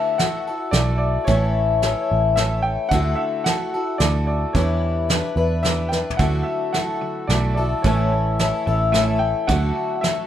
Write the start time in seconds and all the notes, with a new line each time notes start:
Already playing: D3 A3 E4 F#4 A4 E5
0.18 A3 E4 F#4 A4 F#5, snare, closed hi-hat
0.47 E4 F#4 A4
0.71 B1 A3 E4 F#4 A4 D5, snare, closed hi-hat
0.98 D5
1.24 A1 A2 E3 A3 C#4 E4 C#5, kick, closed hi-hat
1.29 A4
1.82 A3 C#4 E4 A4, snare, closed hi-hat
2.11 A1
2.36 A3 C#4 E4 A4 E5, snare, closed hi-hat
2.62 G5
2.89 D2 D3 A3 F#5, kick, closed hi-hat
2.93 E4 F#4 A4
3.15 E5
3.44 A3 E4 F#5, snare, closed hi-hat
3.49 F#4 A4
3.74 E4 F#4 A4
3.98 D2 A3 E4 F#4 A4 D5, snare, closed hi-hat
4.27 D5
4.53 E2 E3 G3 D4 E4 B4 C#5, kick, closed hi-hat
5.09 G3 D4 E4 B4, snare, closed hi-hat
5.36 E2 D4 E4 B4
5.63 G3 D4 E4 B4 E5, snare, closed hi-hat
5.89 E4 B4 G5, snare
5.93 D4
6.10 floor tom
6.17 D2 D3 F#3 A3 E4 F#4 A4 F#5, kick, closed hi-hat
6.43 D3 E5
6.73 D3 F#3 A3 E4 F#4 A4 F#5, snare, closed hi-hat
7.01 D3 F#3
7.27 B1 D3 F#3 A3 E4 D5, snare, closed hi-hat
7.32 F#4 A4
7.54 D3 F#3 A4 D5
7.58 E4 F#4
7.82 A1 A2 E3 A3 C#5, kick, closed hi-hat
7.86 C#4 E4 A4
8.39 A2 E3 A3 C#4 E4 A4, snare, closed hi-hat
8.66 A1 A2 E3 A3 C#4 E4 A4
8.92 A2 E3 A3 C#4 E4 E5, snare, closed hi-hat
8.97 A4
9.19 G5
9.47 D2 D3 F#3 A3 E4 F#4 A4 F#5, kick, closed hi-hat
9.76 D3 F#3
9.95 F#5
10.01 D3 F#3 A3 E4 F#4 A4 E5, snare, closed hi-hat